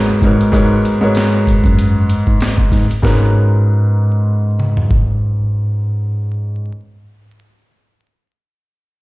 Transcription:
0.00 0.18 G#2 medium
0.00 0.19 G#3 medium
0.00 0.19 B3 medium
0.00 0.19 F#4 medium
0.00 0.19 A#4 medium
0.00 0.19 C#5 medium
0.22 0.35 G#2 loud
0.22 0.50 G#2 medium
0.22 0.51 G#3 medium
0.22 0.51 B3 medium
0.22 0.52 F#4 medium
0.22 0.52 A#4 medium
0.22 0.52 C#5 medium
0.22 kick loud
0.22 closed hi-hat medium
0.41 closed hi-hat medium
0.52 0.97 G#2 medium
0.52 0.77 G#2 loud
0.52 0.97 G#3 medium
0.52 0.97 B3 medium
0.52 0.98 F#4 medium
0.52 0.98 A#4 medium
0.52 0.98 C#5 loud
0.52 kick loud
0.52 closed hi-hat medium
0.85 closed hi-hat medium
1.01 2.88 G#2 loud
1.01 2.88 G#3 medium
1.01 2.89 B3 medium
1.01 2.89 F#4 medium
1.01 2.89 A#4 medium
1.01 2.89 C#5 loud
1.15 snare loud
1.15 closed hi-hat medium
1.47 kick medium
1.47 closed hi-hat medium
1.64 2.12 F#2 medium
1.64 kick loud
1.64 closed hi-hat medium
1.79 closed hi-hat medium
2.10 closed hi-hat medium
2.27 2.38 G#2 medium
2.27 kick medium
2.40 snare loud
2.40 closed hi-hat medium
2.58 kick medium
2.72 2.86 G#2 medium
2.72 kick medium
2.72 snare soft
2.72 closed hi-hat medium
2.91 closed hi-hat medium
3.02 6.68 G#2 medium
3.02 6.69 G#2 medium
3.02 6.68 G#3 medium
3.02 6.69 B3 medium
3.02 6.69 C#4 medium
3.02 6.69 F#4 medium
3.02 6.69 A#4 medium
3.02 kick loud
3.02 snare medium
4.60 mid tom medium
4.77 floor tom medium
4.91 kick medium

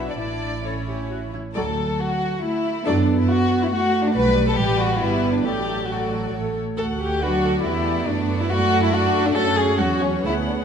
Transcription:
0.00 0.20 B1 soft
0.00 0.20 B3 soft
0.00 0.19 D4 soft
0.00 0.17 F#4 medium
0.08 0.19 D4 soft
0.08 0.18 D5 soft
0.19 1.33 A1 soft
0.19 0.64 D4 medium
0.19 0.60 E4 soft
0.19 0.65 E4 soft
0.19 0.64 D5 medium
0.65 1.32 C#4 soft
0.65 1.34 E4 soft
0.65 0.73 A4 medium
0.65 1.33 C#5 soft
0.88 1.10 G4 soft
1.11 1.19 F#4 medium
1.33 1.41 E4 soft
1.55 1.92 D2 medium
1.55 1.76 F#3 medium
1.55 2.39 F#3 medium
1.55 1.76 A4 medium
1.55 1.97 A4 medium
1.55 1.75 D5 medium
2.00 2.43 F#4 medium
2.44 2.87 A3 medium
2.44 2.86 E4 medium
2.86 3.22 F#2 medium
2.86 3.06 F#3 medium
2.86 3.72 B3 medium
2.86 3.19 D4 medium
2.86 3.06 A4 medium
2.86 3.06 D5 medium
3.20 3.29 E4 medium
3.29 3.61 F#4 medium
3.62 3.72 E4 medium
3.70 4.57 A3 medium
3.70 4.03 F#4 medium
4.05 4.15 D4 medium
4.14 4.54 B1 medium
4.14 4.55 G3 medium
4.14 4.45 B4 medium
4.14 4.55 B4 medium
4.14 4.54 D5 medium
4.47 4.57 A4 medium
4.56 5.01 A1 medium
4.56 5.01 G3 medium
4.56 5.00 G3 medium
4.56 4.78 G4 medium
4.56 5.00 B4 medium
4.56 4.98 D5 medium
4.78 5.00 F#4 medium
4.99 5.45 G1 medium
4.99 5.44 G3 medium
4.99 5.44 B3 medium
4.99 5.34 E4 medium
4.99 5.44 B4 medium
4.99 5.43 D5 medium
5.33 5.45 D4 medium
5.44 6.32 A1 soft
5.44 5.89 F#3 soft
5.44 6.56 A3 medium
5.44 5.89 G4 medium
5.44 5.89 A4 soft
5.44 5.88 D5 soft
5.89 6.33 F#3 soft
5.89 6.33 F#4 medium
5.89 6.33 A4 soft
5.89 6.33 D5 soft
6.33 6.57 A1 medium
6.33 6.58 A3 medium
6.33 6.58 A4 medium
6.33 6.57 C#5 soft
6.78 7.62 D2 medium
6.78 7.20 A3 medium
6.78 7.20 F#4 soft
6.78 6.86 A4 medium
6.78 7.20 F#5 medium
7.01 7.22 G4 medium
7.21 7.63 F#3 medium
7.21 7.66 D4 medium
7.21 7.65 F#4 medium
7.21 7.31 B4 medium
7.21 8.49 D5 medium
7.45 7.53 A4 medium
7.64 8.08 E2 medium
7.64 8.08 A3 medium
7.64 8.08 B3 medium
7.64 8.07 E4 medium
7.64 8.08 G4 medium
8.08 9.35 F#2 medium
8.08 8.94 A3 medium
8.08 8.51 B3 medium
8.08 8.41 D4 medium
8.08 8.51 F#4 medium
8.42 8.52 E4 medium
8.51 8.93 A3 medium
8.51 8.83 F#4 loud
8.51 9.37 A4 medium
8.51 9.35 D5 medium
8.84 8.94 E4 medium
8.93 9.79 A3 medium
8.93 9.37 D4 medium
8.93 9.26 F#4 loud
9.27 9.37 D4 medium
9.36 9.79 F#2 medium
9.36 10.23 C#4 medium
9.36 10.23 F#4 medium
9.36 9.58 A4 loud
9.36 9.80 C#5 medium
9.59 9.80 G#4 loud
9.80 10.24 E2 medium
9.80 10.25 F#3 medium
9.80 10.02 F#4 medium
9.80 10.24 C#5 medium
10.03 10.25 C#4 medium
10.24 10.65 D2 medium
10.24 10.65 A3 medium
10.24 10.65 B3 medium
10.24 10.33 E4 loud
10.24 10.65 G#4 medium
10.24 10.65 F#5 medium
10.48 10.58 D4 medium
10.60 10.65 C#4 medium

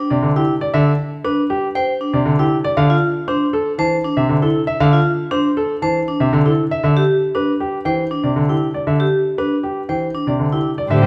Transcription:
0.00 0.14 D4 medium
0.10 0.27 C3 medium
0.10 0.27 D5 medium
0.23 0.39 D3 medium
0.36 0.52 E4 medium
0.36 0.52 G4 medium
0.61 0.78 D5 medium
0.74 0.90 D3 medium
0.74 0.90 E5 medium
1.24 1.41 D4 medium
1.24 1.41 B4 medium
1.50 1.67 G4 medium
1.75 1.92 C5 medium
1.75 1.92 G5 medium
2.01 2.17 D4 medium
2.13 2.30 C3 medium
2.13 2.30 D5 medium
2.26 2.43 D3 medium
2.39 2.56 E4 medium
2.39 2.56 G4 medium
2.64 2.81 D5 medium
2.77 2.94 D3 medium
2.77 2.94 F5 medium
2.90 3.06 F4 medium
3.28 3.45 D4 medium
3.28 3.44 C5 medium
3.53 3.70 A4 medium
3.78 3.95 E3 medium
3.78 3.95 C5 medium
3.78 3.95 A5 medium
4.04 4.21 D4 medium
4.17 4.33 C3 medium
4.17 4.33 E5 medium
4.29 4.46 D3 medium
4.42 4.59 E4 medium
4.42 4.59 A4 medium
4.67 4.84 E5 medium
4.80 4.97 D3 medium
4.80 4.97 F5 medium
4.93 5.10 F4 medium
5.31 5.48 D4 medium
5.31 5.48 C5 medium
5.57 5.73 A4 medium
5.82 5.99 E3 medium
5.82 5.99 C5 medium
5.82 5.99 A5 medium
6.08 6.24 D4 medium
6.20 6.37 C3 medium
6.20 6.37 E5 medium
6.33 6.50 D3 medium
6.46 6.62 E4 medium
6.46 6.62 A4 medium
6.71 6.83 E5 medium
6.83 7.00 D3 medium
6.83 7.01 E5 medium
6.97 7.13 G4 medium
7.35 7.51 D4 medium
7.35 7.51 B4 medium
7.60 7.77 G4 medium
7.85 8.02 E3 medium
7.85 8.02 C5 medium
7.85 8.02 G5 medium
8.11 8.28 D4 medium
8.23 8.40 C3 soft
8.23 8.40 D5 soft
8.36 8.53 D3 medium
8.49 8.66 E4 soft
8.49 8.66 G4 soft
8.74 8.91 D5 medium
8.87 9.04 D3 medium
8.87 9.04 E5 medium
9.00 9.17 G4 medium
9.38 9.55 D4 medium
9.38 9.55 B4 medium
9.63 9.80 G4 medium
9.89 10.06 E3 soft
9.89 10.06 C5 soft
9.89 10.06 G5 soft
10.14 10.31 D4 soft
10.27 10.44 C3 soft
10.27 10.44 D5 soft
10.39 10.56 D3 soft
10.52 10.69 E4 soft
10.52 10.69 G4 soft
10.78 10.95 D5 medium
10.90 11.06 A2 medium
10.90 11.06 D3 medium
10.90 11.06 G4 medium
10.90 11.06 G4 soft
10.90 11.06 C5 medium
10.90 11.06 E5 medium
11.02 11.06 G3 medium

